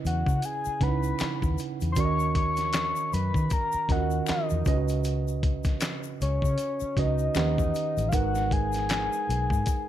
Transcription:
Already playing: C#3 C#4 E4 B4 D#5
0.05 E2 F#5, closed hi-hat, shaker
0.26 C#3, kick, shaker
0.42 G#5, closed hi-hat, shaker
0.65 muted fingered electric bass stroke, shaker
0.81 C#2 C#3 C#4 D#4 B4 F#5 B5, kick, snare, closed hi-hat
0.88 E4
1.03 shaker
1.19 finger snap, muted fingered electric bass stroke, snare, clap, closed hi-hat, shaker
1.42 D#2, kick, shaker
1.58 closed hi-hat, shaker
1.81 E2, closed hi-hat, shaker
1.92 C6, shaker
1.96 D#2 D#3 C#4 F#4 A#4 D5 C#6, kick, closed hi-hat
2.05 D#5
2.19 shaker
2.35 C#6, kick, closed hi-hat
2.57 snare, closed hi-hat, shaker
2.73 finger snap, snare, clap, closed hi-hat, shaker
2.96 shaker
3.13 F#2 B5, closed hi-hat, shaker
3.34 D#3, kick, shaker
3.50 A#5, kick, closed hi-hat, shaker
3.72 muted fingered electric bass stroke, shaker
3.89 D#2 D#3 C#4 F4 A#4 D#5 F#5, kick, snare, closed hi-hat
3.97 F#4
4.11 shaker
4.26 finger snap, muted fingered electric bass stroke, snare, clap, closed hi-hat, shaker
4.31 D#5
4.50 E2, shaker
4.65 C#2 C#3 C#4 F4 B4 D#5, kick, closed hi-hat, shaker
4.74 F#4
4.88 closed hi-hat, shaker
5.04 closed hi-hat, shaker
5.28 shaker
5.43 kick, closed hi-hat
5.64 kick, snare, closed hi-hat, shaker
5.81 finger snap, snare, clap, closed hi-hat, shaker
6.03 shaker
6.21 C#2 C#5, closed hi-hat, shaker
6.42 C#3, kick, shaker
6.58 closed hi-hat, shaker
6.80 muted fingered electric bass stroke, shaker
6.97 C#2 C#3 C#4 F#4 B4 D#5, kick, snare, closed hi-hat
7.18 shaker
7.35 D#2 D#3 C#4 G4 B4 F#5, finger snap, snare, clap, closed hi-hat, shaker
7.58 E2, kick, shaker
7.75 closed hi-hat, shaker
7.97 A1, closed hi-hat, shaker
8.09 G#3 F5, kick, shaker
8.13 G#1 D#4 A#4 B4 F#5, closed hi-hat
8.35 snare, shaker
8.51 G#5, kick, closed hi-hat
8.72 snare, closed hi-hat, shaker
8.89 finger snap, snare, clap, closed hi-hat, shaker
9.13 shaker
9.29 B1, closed hi-hat, shaker
9.50 G#2, kick, shaker
9.66 kick, closed hi-hat, shaker

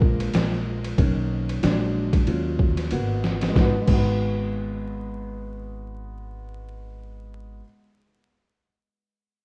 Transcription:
Already playing: A#1 F3 G#3 A#3 A#4
0.02 kick
0.20 ride
0.34 A#1, snare, hi-hat pedal, ride
0.53 snare
0.84 ride
0.98 B1 D#3 A#3 C#4, kick, ride
1.49 ride
1.63 A#1 F#3 G#3 D4, snare, hi-hat pedal, ride
2.13 kick, ride
2.27 D#2 F#3 C#4 F4, ride
2.59 kick
2.77 snare, ride
2.91 G#1 A#3 B3 F#4, hi-hat pedal, ride
3.24 snare
3.41 snare, ride
3.48 G#3
3.52 G#1 B3, kick, snare
3.57 D#4 F#4
3.64 B4
3.81 G#3 B3
3.87 G#1 D#4, kick, crash
3.93 F#4 B4

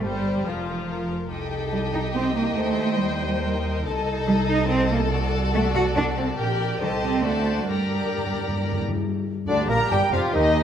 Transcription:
0.01 G1 G3 C5
0.44 F1 F3 F4 A#4
0.88 A#4
1.29 C2 D#4 G4 A4 D#5 G5
1.72 G3
1.93 D#4
2.14 C4 G4
2.36 A#3
2.56 D#2 A3 C5
3.00 G3
3.42 A#4
3.84 C2 D#4 A4 D#5 A5
4.26 G3
4.49 D#4
4.69 C4 A4
4.91 A#3
5.11 F#4 D5
5.54 A3
5.75 F#4
5.96 D4
6.17 C4
6.38 A#1 G4 A#4 D5 G5
6.81 C2 D#3 G4 A4 C5 D#5 A5
7.04 C4
7.24 D2 A3 F#4 A4 C5 D5 A5
7.69 G2 G3 G4 A#4 D5 A#5
7.78 G2
7.86 G2
7.95 G2
8.03 G2
8.10 G2
8.18 G2
8.26 G2
8.34 G2
8.41 G2
8.48 G2
8.56 G2
8.64 G2
8.72 G2
8.80 G2
8.88 G2
8.95 G2
9.47 D2 D3 D4 G4 D5
9.69 A#1 A#2 A#3 A#4 A#5
9.90 G1 G2 G3 G4 G5
10.11 F1 F2 F3 F4 F5
10.33 D#2 D#3 D#4 D#5

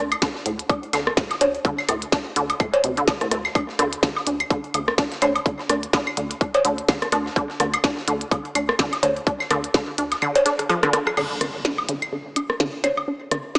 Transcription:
0.00 D2
0.12 closed hi-hat, claves, low woodblock
0.22 D3, kick, snare, closed hi-hat
0.36 snare
0.46 D2 A2, closed hi-hat
0.59 closed hi-hat
0.70 D4, kick, closed hi-hat, low woodblock
0.83 closed hi-hat
0.93 D2 D3, snare, closed hi-hat, claves
1.07 cross-stick
1.17 A2, kick, snare, closed hi-hat
1.31 snare, closed hi-hat, low woodblock
1.41 D2 D4, closed hi-hat, cowbell
1.55 closed hi-hat
1.65 D3, kick, closed hi-hat
1.78 snare, claves
1.89 D2 A2, cross-stick, closed hi-hat, low woodblock
2.02 closed hi-hat
2.12 D4, kick, snare, closed hi-hat
2.36 D2 D3, closed hi-hat
2.50 closed hi-hat, low woodblock
2.60 A2, kick, closed hi-hat, claves
2.74 closed hi-hat, cowbell
2.84 D2 C3, closed hi-hat
2.97 D3, closed hi-hat
3.08 D3, kick, snare, closed hi-hat, low woodblock
3.21 A2, cross-stick, closed hi-hat
3.31 D2 A2, cross-stick, closed hi-hat
3.45 snare, claves
3.55 D4, kick, closed hi-hat, claves, low woodblock
3.69 snare
3.79 D2 D3, cross-stick, closed hi-hat
3.93 closed hi-hat
4.03 D3, kick, snare, closed hi-hat
4.16 snare, low woodblock
4.27 D2 D4, closed hi-hat
4.40 closed hi-hat, claves
4.50 D3, kick, closed hi-hat
4.64 closed hi-hat
4.74 D2 D3, closed hi-hat, low woodblock
4.88 cross-stick
4.98 D4, kick, snare, closed hi-hat
5.12 snare, closed hi-hat
5.22 D2 D3, closed hi-hat, cowbell, claves
5.36 closed hi-hat, low woodblock
5.46 D3, kick, closed hi-hat
5.59 snare
5.70 D2 D4, cross-stick, closed hi-hat
5.83 closed hi-hat
5.93 D3, kick, snare, closed hi-hat, low woodblock
6.07 claves
6.17 D2 D3, closed hi-hat
6.31 closed hi-hat
6.41 D4, kick, closed hi-hat
6.54 closed hi-hat, cowbell, low woodblock
6.65 D2 D3, closed hi-hat
6.78 closed hi-hat
6.89 D3, kick, snare, closed hi-hat, claves
7.02 cross-stick, closed hi-hat
7.12 D2 D4, cross-stick, closed hi-hat, low woodblock
7.26 snare
7.36 D3, kick, closed hi-hat
7.50 snare
7.60 D2 D3, cross-stick, closed hi-hat
7.74 closed hi-hat, claves, low woodblock
7.84 D4, kick, snare, closed hi-hat
7.97 snare
8.08 D2 D3, closed hi-hat
8.21 closed hi-hat
8.31 D3, kick, closed hi-hat, low woodblock
8.45 closed hi-hat
8.55 D2 D4, closed hi-hat, claves
8.69 cross-stick
8.79 D3, kick, snare, closed hi-hat
8.93 snare, closed hi-hat, low woodblock
9.03 D2 D3, closed hi-hat, cowbell
9.16 closed hi-hat
9.27 D4, kick, closed hi-hat
9.40 snare, claves
9.51 D2 D3, cross-stick, closed hi-hat, low woodblock
9.64 closed hi-hat
9.74 D3, kick, snare, closed hi-hat
9.98 D2 D4, closed hi-hat
10.12 snare, closed hi-hat, low woodblock
10.22 D3, closed hi-hat, claves
10.35 closed hi-hat, cowbell
10.46 D4, cross-stick, snare, closed hi-hat
10.59 cross-stick, closed hi-hat
10.69 F3, cross-stick, closed hi-hat, low woodblock
10.83 D3, cross-stick, closed hi-hat
10.93 D3, cross-stick, closed hi-hat
11.07 cross-stick, claves
11.17 D3, crash, impact, claves, low woodblock
11.41 D3, cross-stick, closed hi-hat
11.65 D4, snare
11.78 low woodblock
11.89 D3, closed hi-hat
12.02 closed hi-hat, claves
12.13 D3
12.36 D4, closed hi-hat, low woodblock
12.50 cross-stick
12.60 D3, snare
12.84 D3, closed hi-hat, cowbell, claves
12.97 low woodblock
13.08 D4
13.31 D3, cross-stick, closed hi-hat
13.55 D3, snare, low woodblock

